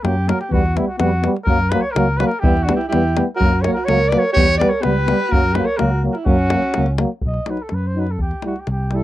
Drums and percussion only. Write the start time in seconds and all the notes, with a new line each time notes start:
0.05 davul high
0.29 davul high
0.41 davul high
0.54 davul low
0.66 davul high
0.77 davul high
1.00 davul high
1.24 davul high
1.36 davul high
1.47 davul low
1.60 davul high
1.72 davul high
1.96 davul high
2.20 davul high
2.31 davul high
2.44 davul low
2.57 davul high
2.69 davul high
2.81 davul high
2.92 davul high
3.17 davul high
3.41 davul low
3.53 davul high
3.64 davul high
3.88 davul high
4.12 davul high
4.37 davul low
4.49 davul high
4.61 davul high
4.83 davul high
5.08 davul high
5.20 davul high
5.32 davul low
5.44 davul high
5.55 davul high
5.79 davul high
6.15 davul high
6.26 davul low
6.39 davul high
6.50 davul high
6.62 davul high
6.74 davul high
6.86 davul high
6.98 davul high
7.21 davul low
7.34 davul high
7.46 davul high
7.57 davul high
7.69 davul high
8.07 davul high
8.19 davul low
8.31 davul high
8.42 davul high
8.56 davul high
8.67 davul high
8.91 davul high